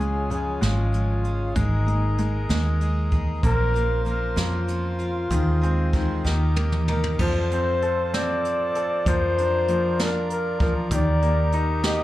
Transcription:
Already playing: fingered electric bass C#2, grand piano C#3, harmonium F4 G#4 C#5 G#5, flugelhorn G#4
0.00 grand piano G#3, steel-string acoustic guitar G#3 C#4 F4, closed hi-hat
0.30 grand piano C#3, steel-string acoustic guitar F3 G#3 C#4 F4, flugelhorn G#4, closed hi-hat
0.61 fingered electric bass G#1, steel-string acoustic guitar C#3 F3 G#3 C#4 F4, grand piano G#3, flugelhorn F4, snare, closed hi-hat
0.93 steel-string acoustic guitar F3 G#3 C#4 F4, closed hi-hat
1.24 steel-string acoustic guitar G#3 C#4 F4, closed hi-hat
1.55 fingered electric bass G#1, steel-string acoustic guitar G#3 A#3 D#4 G#4, grand piano G#3, flugelhorn D#4, harmonium G#4 A#4 D#5 A#5, kick, closed hi-hat
1.86 grand piano G#3, steel-string acoustic guitar A#3 D#4 G#4, closed hi-hat
2.18 steel-string acoustic guitar G#3 A#3 D#4 G#4, grand piano G#3, closed hi-hat
2.49 fingered electric bass D#2, grand piano G#3, steel-string acoustic guitar G#3 A#3 D#4 G#4, snare, closed hi-hat
2.81 steel-string acoustic guitar G#3 A#3 D#4 G#4, closed hi-hat
3.11 steel-string acoustic guitar A#3 D#4 G#4, kick, closed hi-hat
3.42 fingered electric bass A#1, steel-string acoustic guitar A#2 F3 C4 C#4 F4, grand piano A#3, harmonium A#4 C5 F5 C6, flugelhorn A#4, kick, closed hi-hat
3.74 grand piano A#3, steel-string acoustic guitar C4 C#4 F4, closed hi-hat
4.05 steel-string acoustic guitar F3 C4 C#4 F4, grand piano A#3, flugelhorn A#4, closed hi-hat
4.36 fingered electric bass F2, steel-string acoustic guitar A#2 F3 C4 C#4 F4, grand piano A#3, flugelhorn F4, snare, closed hi-hat
4.68 steel-string acoustic guitar F3 C4 C#4 F4, closed hi-hat
4.99 steel-string acoustic guitar C4 C#4 F4, closed hi-hat
5.30 fingered electric bass D#2, steel-string acoustic guitar D#3 G#3 C4 G#4, grand piano D#3, harmonium G#4 C5 D#5, kick, closed hi-hat
5.61 steel-string acoustic guitar G#3 C4 G#4, grand piano C4, closed hi-hat
5.93 steel-string acoustic guitar D#3 G#3 C4 G#4, grand piano D#3, kick, closed hi-hat
6.24 fingered electric bass D#2, grand piano D#3, steel-string acoustic guitar D#3 A#3 D#4 G4, harmonium G4 A#4 A#5, snare
6.56 steel-string acoustic guitar D#3 A#3 D#4 G4, grand piano A#3, high tom
6.72 mid tom
6.88 steel-string acoustic guitar A#3 D#4 G4, grand piano D#4, flugelhorn A#4, mid tom
7.04 floor tom
7.19 fingered electric bass F2, grand piano F3, harmonium F4 A4 C5 A5, flugelhorn C5, kick, crash
7.51 grand piano C4, closed hi-hat
7.82 grand piano A4, closed hi-hat
8.13 grand piano C4, flugelhorn D5, snare, closed hi-hat
8.45 closed hi-hat
8.75 grand piano A4, closed hi-hat
9.06 fingered electric bass F2, grand piano F3, harmonium A#4 D5 A#5, flugelhorn C5, kick, closed hi-hat
9.38 grand piano D4, closed hi-hat
9.68 grand piano F3, closed hi-hat
9.99 grand piano D4, flugelhorn A#4, snare, closed hi-hat
10.30 flugelhorn A#4, closed hi-hat
10.60 grand piano F3, flugelhorn A#4, kick, closed hi-hat
10.91 fingered electric bass D#2, grand piano D#3, harmonium D#4 G4, flugelhorn D5, kick, closed hi-hat
11.22 grand piano A#3, closed hi-hat
11.52 grand piano D#4, closed hi-hat
11.83 grand piano G4, flugelhorn D#5, snare, closed hi-hat

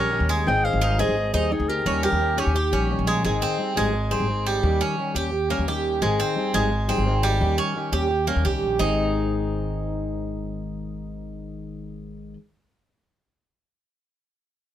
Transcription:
Already playing: upright bass A#1, steel-string acoustic guitar G3 C#4 G4, cuban tres C#4, nylon-string guitar G4, clarinet A#4
0.11 steel-string acoustic guitar D#3 G3 C#4 G4
0.20 upright bass D#2
0.29 cuban tres G#3
0.46 upright bass G#1, steel-string acoustic guitar D#3 C4 D#4 G#4, nylon-string guitar D#5, clarinet G5
0.65 nylon-string guitar C5, clarinet F5
0.73 upright bass G#1
0.81 steel-string acoustic guitar G3 C4 D#4 G#4, cuban tres D#4
0.98 steel-string acoustic guitar G3 C4 D#4 G#4, cuban tres G#4, nylon-string guitar C5, clarinet D#5
1.08 upright bass G#1
1.17 muted steel-string acoustic guitar stroke
1.34 upright bass D#2, steel-string acoustic guitar G3 C4 D#4 G#4, cuban tres D#4, nylon-string guitar C5, clarinet D#5
1.52 steel-string acoustic guitar C4 D#4 G#4, nylon-string guitar D#4, clarinet G#4
1.60 upright bass D2
1.69 nylon-string guitar G4, clarinet A#4
1.85 upright bass D#2, steel-string acoustic guitar D#3 G3 C#4 G4, cuban tres C#4
2.03 cuban tres G4, nylon-string guitar G4, clarinet A#4
2.12 upright bass D#2
2.20 steel-string acoustic guitar D#3 G3 C#4 G4
2.37 steel-string acoustic guitar G3 C#4 G4, cuban tres C#4, nylon-string guitar D#4, clarinet G4
2.47 upright bass D#2
2.54 cuban tres G4, muted steel-string acoustic guitar stroke
2.72 upright bass A#1, steel-string acoustic guitar G3 C#4 G4, cuban tres C#4
2.90 steel-string acoustic guitar D#3 G3 C#4 G4
2.99 upright bass A#1
3.07 cuban tres G#3
3.24 upright bass G#1, steel-string acoustic guitar D#3 C4 D#4 G#4, cuban tres G#3
3.42 cuban tres C4
3.59 steel-string acoustic guitar G3 C4 D#4 G#4
3.76 upright bass G#1, steel-string acoustic guitar G3 C4 D#4 G#4, cuban tres G#3
3.93 muted steel-string acoustic guitar stroke
4.11 steel-string acoustic guitar G3 C4 D#4 G#4, cuban tres C4
4.20 upright bass G#1
4.29 steel-string acoustic guitar C4 D#4 G#4
4.47 cuban tres G3
4.63 upright bass D#2, steel-string acoustic guitar D#3 G3 C#4 G4
4.81 cuban tres C#4
4.98 steel-string acoustic guitar D#3 G3 C#4 G4
5.15 upright bass D#2, steel-string acoustic guitar G3 C#4 G4, cuban tres G4
5.32 muted steel-string acoustic guitar stroke
5.50 steel-string acoustic guitar G3 C#4 G4, cuban tres A#3
5.59 upright bass D#2
5.67 steel-string acoustic guitar D#3 G3 C#4 G4, cuban tres G4
6.01 upright bass G#1, steel-string acoustic guitar D#3 C4 D#4 G#4, cuban tres G#3
6.20 cuban tres C4
6.36 steel-string acoustic guitar G3 C4 D#4 G#4
6.54 upright bass G#1, steel-string acoustic guitar G3 C4 D#4 G#4, cuban tres G#3
6.71 muted steel-string acoustic guitar stroke
6.89 steel-string acoustic guitar G3 C4 D#4 G#4, cuban tres C4
6.97 upright bass G#1
7.07 steel-string acoustic guitar C4 D#4 G#4
7.23 cuban tres G3
7.40 upright bass D#2, steel-string acoustic guitar D#3 G3 C#4 G4
7.58 cuban tres C#4
7.76 steel-string acoustic guitar D#3 G3 C#4 G4
7.92 upright bass D#2, steel-string acoustic guitar G3 C#4 G4, cuban tres G4
8.10 muted steel-string acoustic guitar stroke
8.27 steel-string acoustic guitar G3 C#4 G4, cuban tres A#3
8.36 upright bass D#2
8.45 upright bass C2, steel-string acoustic guitar D#3 G3 C#4 G4, cuban tres G4
8.62 upright bass A#1
8.79 upright bass G#1, steel-string acoustic guitar G#2 D#3 C4 D#4 G#4, cuban tres D#4

